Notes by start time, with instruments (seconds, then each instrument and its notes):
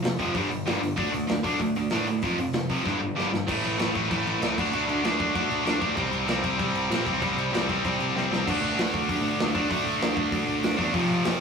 0.02 picked electric bass F1, distorted electric guitar F2 C3, snare, open hi-hat
0.19 picked electric bass F#1, distorted electric guitar F2 C3 F3, kick, open hi-hat
0.35 picked electric bass G1, distorted electric guitar G2 D3 G3, kick, open hi-hat
0.50 picked electric bass G1, distorted electric guitar G2 D3, open hi-hat
0.66 picked electric bass G1, distorted electric guitar G2 D3 G3, snare, open hi-hat
0.81 picked electric bass G1, distorted electric guitar G2 D3, open hi-hat
0.96 picked electric bass D2, distorted electric guitar D3 A3 D4, kick, open hi-hat
1.13 picked electric bass D2, distorted electric guitar D3 A3, open hi-hat
1.28 picked electric bass D2, distorted electric guitar D3 A3, snare, open hi-hat
1.44 picked electric bass D2, distorted electric guitar D3 A3 D4, kick, open hi-hat
1.60 picked electric bass D2, distorted electric guitar D3 A3, kick, open hi-hat
1.75 picked electric bass D2, distorted electric guitar D3 A3, open hi-hat
1.90 picked electric bass A2, distorted electric guitar D3 A3 D4, snare, open hi-hat
2.06 distorted electric guitar D3 A3, open hi-hat
2.22 picked electric bass F1, distorted electric guitar F2 C3 F3, kick, open hi-hat
2.38 picked electric bass F1, distorted electric guitar F2 C3, open hi-hat
2.53 picked electric bass F1, distorted electric guitar F2 C3, snare, open hi-hat
2.70 picked electric bass F1, distorted electric guitar F2 C3 F3, kick, open hi-hat
2.84 picked electric bass G1, distorted electric guitar G2 D3 G3, kick, snare
3.00 picked electric bass G1, distorted electric guitar G2 D3
3.16 picked electric bass G1, distorted electric guitar G2 D3 G3, snare
3.31 picked electric bass G1, distorted electric guitar G2 D3, snare
3.47 picked electric bass A1, distorted electric guitar A2 E3 A3, kick, crash
3.64 picked electric bass A1, crash
3.79 picked electric bass A1, distorted electric guitar A2 E3 A3, snare, crash
3.95 picked electric bass A1, distorted electric guitar A2 E3 A3, kick, crash
4.10 picked electric bass A1, distorted electric guitar A2 E3 A3, kick, crash
4.26 picked electric bass A1, crash
4.41 picked electric bass C#2, distorted electric guitar A2 E3 A3, snare, crash
4.58 picked electric bass D2, distorted electric guitar D3 A3 D4, kick, crash
4.73 picked electric bass D2, distorted electric guitar D3 A3 D4, crash
4.88 picked electric bass D2, crash
5.04 picked electric bass D2, distorted electric guitar D3 A3 D4, snare, crash
5.19 distorted electric guitar D3 A3 D4, kick, crash
5.35 picked electric bass D2, distorted electric guitar D3 A3 D4, kick, crash
5.50 picked electric bass D2, crash
5.64 picked electric bass D2, distorted electric guitar D3 A3 D4, snare, crash
5.80 picked electric bass D2, distorted electric guitar D3 A3 D4, kick, crash
5.96 picked electric bass C2, distorted electric guitar C3 G3 C4, kick, crash
6.11 picked electric bass C2, crash
6.26 picked electric bass C2, distorted electric guitar C3 G3 C4, snare, crash
6.43 picked electric bass C2, distorted electric guitar C3 G3 C4, kick, crash
6.58 picked electric bass C2, distorted electric guitar C3 G3 C4, kick, crash
6.74 picked electric bass C2, crash
6.90 picked electric bass A#2, distorted electric guitar C3 G3 C4, snare, crash
7.06 picked electric bass C2, distorted electric guitar C3 G3 C4, kick, crash
7.21 picked electric bass C2, distorted electric guitar C3 G3 C4, kick, crash
7.36 picked electric bass C2, crash
7.53 picked electric bass C2, distorted electric guitar C3 G3 C4, snare, crash
7.68 distorted electric guitar C3 G3 C4, kick, crash
7.84 picked electric bass C2, distorted electric guitar C3 G3 C4, kick, crash
7.99 picked electric bass C2, crash
8.15 picked electric bass C2, distorted electric guitar C3 G3 C4, snare
8.31 picked electric bass C2, distorted electric guitar C3 G3 C4, snare
8.46 picked electric bass D2, distorted electric guitar D3 A3 D4, kick, crash
8.61 picked electric bass D2
8.76 picked electric bass D2, snare, open hi-hat
8.94 picked electric bass D2, kick
9.09 picked electric bass D2, kick, open hi-hat
9.21 picked electric bass D2
9.39 picked electric bass D2, snare, open hi-hat
9.54 picked electric bass D2, distorted electric guitar D3 A3 D4, kick
9.69 picked electric bass D2, distorted electric guitar D3 A3 D4, kick, open hi-hat
9.85 picked electric bass D2
10.01 picked electric bass D2, snare, open hi-hat
10.17 picked electric bass D2, kick
10.32 picked electric bass D2, kick, open hi-hat
10.46 picked electric bass D2
10.63 picked electric bass D2, snare, open hi-hat
10.77 picked electric bass E2, distorted electric guitar D3 A3 D4, kick
10.92 picked electric bass F1, distorted electric guitar F2 C3 F3, kick, open hi-hat
11.09 picked electric bass F1
11.24 picked electric bass F1, snare, open hi-hat